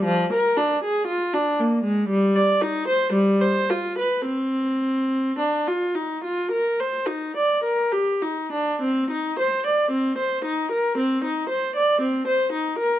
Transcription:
\new Staff \with { instrumentName = "Viola" } { \time 4/4 \key c \minor \tempo 4 = 56 f16 bes'16 d'16 aes'16 f'16 d'16 bes16 aes16 g16 d''16 ees'16 c''16 g16 c''16 f'16 b'16 | c'4 d'16 f'16 ees'16 f'16 bes'16 c''16 ees'16 d''16 bes'16 g'16 ees'16 d'16 | c'16 ees'16 c''16 d''16 c'16 c''16 ees'16 bes'16 c'16 ees'16 c''16 d''16 c'16 c''16 ees'16 bes'16 | }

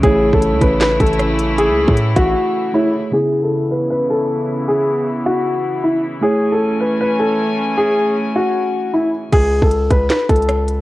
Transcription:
<<
  \new Staff \with { instrumentName = "Grand piano" } { \time 4/4 \key cis \minor \tempo 4 = 155 gis'8. a'8. b'8 b'8 a'4. | gis'4 r8 fis'4. e'8 r8 | gis'8. a'8. b'8 b'8 a'4. | gis'4 r8 fis'4. e'8 r8 |
gis'8. a'8. b'8 b'8 a'4. | gis'4 r8 fis'4. e'8 r8 | gis'8. a'8. b'8 b'8 a'4. | }
  \new Staff \with { instrumentName = "Tine electric piano" } { \time 4/4 \key cis \minor <a e' cis''>1~ | <a e' cis''>2. <a gis' cis''>4 | <cis b e'>1~ | <cis b e'>1 |
<a e' cis''>1~ | <a e' cis''>1 | r1 | }
  \new Staff \with { instrumentName = "String section" } { \time 4/4 \key cis \minor <cis e a e'>1~ | <cis e a e'>1 | <cis e b e'>1~ | <cis e b e'>1 |
<e a cis' gis''>1~ | <e a cis' gis''>1 | r1 | }
  \new Staff \with { instrumentName = "808-style bass" } { \clef bass \time 4/4 \key cis \minor a,,8. a,,8 cis,16 a,,4 a,,4.~ | a,,16 cis,8 a,8. a,,8 r2 | r1 | r1 |
r1 | r1 | cis,8. cis,8. cis,8 r8 cis,4. | }
  \new DrumStaff \with { instrumentName = "Drums" } \drummode { \time 4/4 <hh bd>8. bd16 hh8 <hh bd>8 \tuplet 3/2 { <hc hh sn>16 r16 r16 <hh bd>16 hh16 hh16 } <hh ss>8 hh8 | hh8. bd16 hh8 <hh bd>8 r4 r4 | r4 r4 r4 r4 | r4 r4 r4 r4 |
r4 r4 r4 r4 | r4 r4 r4 r4 | <cymc hh bd>8. bd16 hh8 <hh bd>8 \tuplet 3/2 { <hc hh sn>16 r16 r16 <hh bd>16 hh16 hh16 } <hh ss>8 hh8 | }
>>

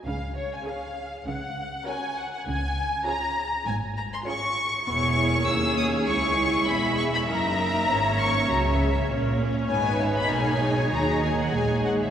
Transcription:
<<
  \new Staff \with { instrumentName = "Violin section" } { \time 4/4 \key des \major \tempo 4 = 99 f''8 des''16 aes''16 f''4 ges''4 aes''8 ges''16 ges''16 | aes''4 bes''4 aes''8 bes''16 c'''16 des'''4 | \key cis \dorian cis'''4 e'''8 dis'''8 cis'''4 b''8 cis'''16 b''16 | ais''4. cis'''8 ais''8 r4. |
gis''8 e''16 b''16 gis''4 ais''8 gis''16 fis''16 gis''8 fis''16 e''16 | }
  \new Staff \with { instrumentName = "Violin section" } { \time 4/4 \key des \major << { r4 des''4 r4 des''4 | r4 des''4 r4 des''4 | \key cis \dorian cis''2. e''4~ | e''2 e''4 cis''4~ |
cis''1 | } \\ { r4 aes'4 r4 bes'4 | r4 aes'4 r4 aes'4 | gis'1 | ais'4 cis''2. |
b'4 gis'2. | } >> }
  \new Staff \with { instrumentName = "Viola section" } { \time 4/4 \key des \major << { r4 aes'4 r4 ges'4 | r4 f'4 r4 f'4 | \key cis \dorian e'4 cis'4 e'8 e'4. | dis'4 cis'4 cis'4 cis'4 |
dis'2. dis'4 | } \\ { r4 des'4 r4 des'4 | r4 des'4 r4 des'4 | b8 ais4. gis2 | ais8 ais4. fis8 gis8 ais8 cis'8 |
b4 ais8 gis8 fis4 gis4 | } >> }
  \new Staff \with { instrumentName = "Cello section" } { \clef bass \time 4/4 \key des \major des4 r4 des4 r4 | des4 r4 aes,4 r4 | \key cis \dorian e,4 dis,4 cis,4 e,4 | fis,4 gis,4 cis4 ais,4 |
gis,4 b,4 dis4 ais,4 | }
  \new Staff \with { instrumentName = "Double bass section" } { \clef bass \time 4/4 \key des \major des,4 r4 des,4 r4 | des,4 r4 aes,,4 r4 | \key cis \dorian e,,4 dis,4 cis,4 e,,4 | fis,,4 gis,,4 cis,4 ais,,4 |
gis,,4 b,,4 dis,4 ais,,4 | }
>>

